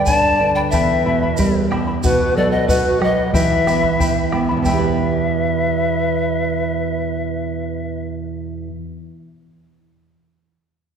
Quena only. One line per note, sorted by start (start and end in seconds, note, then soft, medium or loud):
0.06 0.52 D5 medium
0.55 0.61 D5 medium
0.71 1.66 B4 medium
2.03 2.37 F#4 medium
2.35 2.54 A4 medium
2.52 2.70 B4 medium
2.68 3.02 F#4 medium
3.01 3.33 B4 medium
3.34 4.28 B4 medium
4.64 8.03 B4 medium